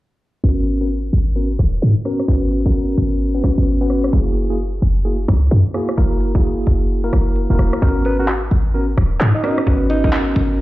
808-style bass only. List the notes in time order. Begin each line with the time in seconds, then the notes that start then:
0.44 G#1
1.13 G#1
1.59 D#1
1.82 G#2
2.28 G#1
2.98 G#1
3.58 G#1
4.13 F#1
4.82 F#1
5.28 C#2
5.51 F#2
5.98 F#1
6.67 F#1
7.13 F#1
7.50 E1
7.59 E1
7.82 G#1
8.51 G#1
8.98 D#1
9.21 G#2
9.67 G#1
10.36 G#1